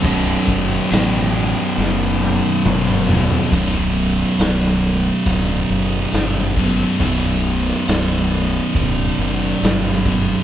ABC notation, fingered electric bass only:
X:1
M:4/4
L:1/8
Q:1/4=69
K:Clyd
V:1 name="Fingered electric bass" clef=bass
B,,,, F,,, A,,,2 F,,,2 F,,,2 | B,,,,2 B,,,,2 D,,, F,,, G,,,2 | B,,,,2 B,,,,2 D,,, F,,, G,,,2 |]